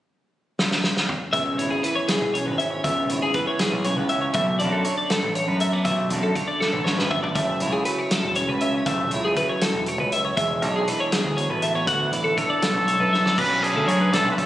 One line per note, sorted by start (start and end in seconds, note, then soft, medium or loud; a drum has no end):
0.59 snare medium
0.71 snare medium
0.84 snare medium
0.97 snare medium
1.09 mid tom medium
1.33 1.58 C#2 medium
1.33 1.84 C#3 medium
1.33 2.85 B3 medium
1.33 1.58 E5 medium
1.33 kick medium
1.33 closed hi-hat medium
1.58 1.80 G#1 medium
1.58 2.82 E4 soft
1.58 1.71 C#5 medium
1.58 closed hi-hat medium
1.70 1.83 G#4 medium
1.83 2.82 E3 medium
1.83 1.96 B4 medium
1.83 closed hi-hat medium
1.96 2.08 C#5 medium
2.08 2.33 G#4 medium
2.08 snare loud
2.08 closed hi-hat medium
2.21 2.43 B1 medium
2.34 2.82 C#3 medium
2.34 2.46 C#5 medium
2.34 closed hi-hat medium
2.46 2.79 G#1 medium
2.46 2.58 B4 medium
2.58 2.82 C#4 medium
2.58 2.71 E5 medium
2.58 closed hi-hat medium
2.71 2.84 C#5 medium
2.84 3.10 C#2 medium
2.84 3.35 C#3 medium
2.84 4.36 B3 medium
2.84 3.10 E5 medium
2.84 kick medium
2.84 closed hi-hat medium
3.09 3.31 G#1 medium
3.09 4.33 E4 soft
3.09 3.22 C#5 medium
3.09 closed hi-hat medium
3.22 3.35 G#4 medium
3.34 4.32 E3 medium
3.34 3.47 B4 medium
3.34 kick medium
3.34 closed hi-hat soft
3.47 3.60 C#5 medium
3.59 3.85 G#4 medium
3.59 snare loud
3.59 closed hi-hat medium
3.72 3.94 B1 medium
3.84 4.33 C#3 medium
3.84 3.96 C#5 medium
3.84 closed hi-hat medium
3.96 4.30 C#2 medium
3.96 4.09 B4 medium
4.09 4.33 C#4 medium
4.09 4.21 E5 medium
4.09 closed hi-hat medium
4.21 4.34 C#5 medium
4.33 4.62 B1 medium
4.33 4.86 B2 medium
4.33 5.60 A3 medium
4.33 4.58 E5 medium
4.33 kick loud
4.33 closed hi-hat medium
4.59 4.82 F#2 medium
4.59 6.10 D4 medium
4.59 4.72 D5 medium
4.59 closed hi-hat medium
4.72 4.85 A4 medium
4.84 6.34 D3 medium
4.84 4.97 C#5 medium
4.84 closed hi-hat medium
4.98 5.10 D5 medium
5.10 5.35 A4 medium
5.10 snare loud
5.10 closed hi-hat medium
5.23 5.45 A1 medium
5.35 5.83 F#2 medium
5.35 5.48 C#5 medium
5.35 closed hi-hat medium
5.48 5.81 F#2 medium
5.48 5.60 B4 medium
5.60 5.73 A3 medium
5.60 5.73 E5 medium
5.60 closed hi-hat medium
5.73 5.85 B3 soft
5.73 5.84 D5 medium
5.84 6.11 B1 medium
5.84 6.36 B2 medium
5.84 7.36 A3 medium
5.84 6.10 E5 medium
5.84 kick medium
5.84 closed hi-hat medium
6.10 6.32 F#2 medium
6.10 7.36 D4 soft
6.10 6.23 D5 medium
6.10 closed hi-hat medium
6.23 6.35 A4 medium
6.35 7.36 D3 medium
6.35 6.48 C#5 medium
6.35 kick medium
6.35 closed hi-hat medium
6.48 6.60 D5 medium
6.60 6.86 A4 medium
6.60 snare medium
6.73 6.95 A1 medium
6.73 high tom soft
6.84 7.33 F#2 medium
6.84 6.98 C#5 medium
6.84 snare medium
6.98 7.31 G#1 medium
6.98 7.11 B4 medium
6.98 snare medium
7.11 7.33 B3 medium
7.11 7.22 E5 medium
7.11 floor tom medium
7.22 7.35 D5 medium
7.22 floor tom medium
7.35 7.62 F#1 medium
7.35 8.84 F#2 medium
7.35 8.84 A3 medium
7.35 7.61 E5 medium
7.35 kick medium
7.35 closed hi-hat medium
7.60 7.83 C#2 medium
7.60 8.90 E4 medium
7.60 7.73 C#5 medium
7.60 closed hi-hat medium
7.73 7.85 G#4 medium
7.85 8.84 F#3 medium
7.85 7.99 B4 medium
7.85 closed hi-hat medium
7.99 8.12 C#5 medium
8.11 8.37 A4 medium
8.11 snare loud
8.11 closed hi-hat medium
8.23 8.45 E1 medium
8.35 8.84 C#3 medium
8.35 8.49 C#5 medium
8.35 closed hi-hat medium
8.47 8.81 C#2 medium
8.47 8.61 B4 medium
8.61 8.84 C#4 medium
8.61 8.75 E5 medium
8.61 closed hi-hat medium
8.75 8.86 C#5 medium
8.86 9.11 F#1 medium
8.86 9.87 F#2 medium
8.86 10.35 A3 medium
8.86 9.12 E5 medium
8.86 kick medium
8.86 closed hi-hat medium
9.11 9.33 C#2 medium
9.11 10.35 E4 medium
9.11 9.24 C#5 medium
9.11 closed hi-hat soft
9.25 9.37 G#4 medium
9.36 10.35 F#3 medium
9.36 9.49 B4 medium
9.36 kick medium
9.36 closed hi-hat soft
9.49 9.62 C#5 medium
9.61 9.87 A2 medium
9.61 9.88 A4 medium
9.61 snare loud
9.61 closed hi-hat medium
9.73 9.96 E1 medium
9.86 10.12 G#2 medium
9.86 10.00 C#5 medium
9.86 closed hi-hat soft
9.99 10.32 C#2 medium
9.99 10.12 B4 medium
10.12 10.38 F#2 medium
10.12 10.24 E5 medium
10.12 closed hi-hat medium
10.25 10.36 C#5 medium
10.37 10.62 E1 medium
10.37 11.85 E2 medium
10.37 11.85 G#3 medium
10.37 10.62 E5 medium
10.37 kick medium
10.37 closed hi-hat medium
10.62 10.84 B1 medium
10.62 11.88 D4 medium
10.62 10.75 C#5 medium
10.62 closed hi-hat medium
10.76 10.88 G#4 medium
10.88 11.85 E3 medium
10.88 11.00 B4 medium
10.88 closed hi-hat medium
11.00 11.13 C#5 medium
11.12 11.38 G#4 medium
11.12 snare loud
11.12 closed hi-hat medium
11.24 11.47 D2 medium
11.37 11.85 B2 medium
11.37 11.50 C#5 medium
11.37 closed hi-hat medium
11.49 11.82 A1 medium
11.49 11.63 B4 medium
11.62 11.75 A3 medium
11.62 11.75 E5 medium
11.62 closed hi-hat medium
11.75 11.86 B3 soft
11.75 11.87 C#5 medium
11.86 12.62 D2 medium
11.86 12.12 D2 medium
11.86 12.36 D3 soft
11.86 13.35 B3 medium
11.86 12.13 F#4 medium
11.86 12.12 F#5 medium
11.86 kick medium
11.86 closed hi-hat medium
12.12 12.34 A1 medium
12.12 13.35 E4 soft
12.12 12.25 D5 medium
12.12 closed hi-hat medium
12.24 12.37 A4 medium
12.37 13.86 D3 medium
12.37 13.41 A4 medium
12.37 12.50 C#5 medium
12.37 kick medium
12.37 closed hi-hat medium
12.50 12.63 D5 medium
12.62 12.88 F#2 medium
12.62 12.88 A4 medium
12.62 snare loud
12.62 closed hi-hat medium
12.73 12.96 B1 medium
12.87 13.13 G#2 medium
12.87 13.00 C#5 medium
12.87 closed hi-hat medium
12.99 13.33 F#2 medium
12.99 13.13 B4 medium
13.13 13.37 A2 medium
13.13 13.25 E5 medium
13.13 snare soft
13.26 13.37 D5 medium
13.26 snare medium
13.37 13.71 B1 medium
13.37 13.88 B2 medium
13.37 13.88 C#4 medium
13.37 13.65 B4 loud
13.37 13.50 D5 medium
13.37 kick loud
13.37 crash loud
13.50 13.63 C#5 medium
13.63 14.46 D4 medium
13.63 14.16 G#4 medium
13.63 13.76 D5 medium
13.63 closed hi-hat medium
13.75 13.86 D2 medium
13.75 13.88 A4 medium
13.87 14.09 F#2 medium
13.87 14.46 D3 medium
13.87 14.37 C#4 medium
13.87 14.00 C#5 medium
13.87 closed hi-hat medium
14.01 14.13 B4 medium
14.12 14.23 B1 medium
14.12 14.46 A3 medium
14.12 14.30 A4 loud
14.12 14.38 D5 medium
14.12 snare loud
14.12 closed hi-hat medium
14.24 14.46 B1 medium
14.31 14.40 B4 medium
14.37 14.46 F#2 medium
14.37 14.46 C#4 medium
14.37 14.46 A4 medium
14.37 14.46 C#5 medium
14.37 kick medium
14.37 closed hi-hat medium